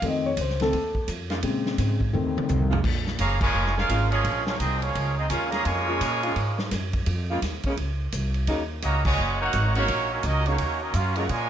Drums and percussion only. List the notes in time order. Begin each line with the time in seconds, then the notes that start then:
0.02 kick, ride
0.37 kick, hi-hat pedal, ride
0.49 snare
0.60 snare, ride
0.73 kick, ride
0.95 kick
1.08 kick, hi-hat pedal, ride
1.30 snare, ride
1.43 kick, ride
1.66 snare
1.78 kick, snare, hi-hat pedal, ride
2.00 kick
2.14 high tom
2.38 high tom
2.49 floor tom, hi-hat pedal
2.72 floor tom
2.84 kick, crash
3.06 snare
3.18 kick, hi-hat pedal, ride
3.41 kick, crash
3.66 snare
3.78 snare
3.89 kick, hi-hat pedal, ride
4.12 ride
4.24 kick, ride
4.47 snare
4.60 kick, hi-hat pedal, ride
4.82 ride
4.95 kick, ride
5.30 kick, hi-hat pedal, ride
5.52 snare, ride
5.65 kick, ride
6.01 kick, hi-hat pedal, ride
6.23 ride
6.36 kick, ride
6.59 snare
6.71 kick, snare, hi-hat pedal, ride
6.93 kick, ride
7.06 kick, ride
7.42 kick, snare, hi-hat pedal, ride
7.63 kick, ride
7.77 kick, ride
8.12 kick, hi-hat pedal, ride
8.34 ride
8.47 kick, ride
8.82 kick, hi-hat pedal, ride
9.05 kick, crash
9.53 kick, hi-hat pedal, ride
9.75 ride
9.88 kick, ride
10.23 kick, hi-hat pedal, ride
10.46 ride
10.58 kick, ride
10.94 kick, hi-hat pedal, ride
11.15 ride
11.29 kick, ride